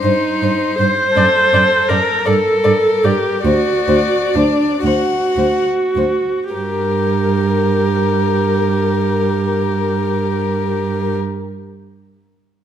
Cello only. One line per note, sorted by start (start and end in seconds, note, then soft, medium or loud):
0.03 0.11 G2 soft
0.42 0.50 G2 soft
0.79 0.87 G2 soft
1.16 1.24 F#2 soft
1.53 1.61 F#2 soft
1.90 1.98 F#2 soft
2.27 2.35 G2 medium
2.65 2.73 G2 soft
3.04 3.12 G2 soft
3.45 3.53 D2 medium
3.88 3.96 D2 medium
4.35 4.43 D2 soft
4.84 4.92 D2 soft
5.37 5.45 D2 soft
5.96 6.04 D2 soft
6.54 11.16 G2 soft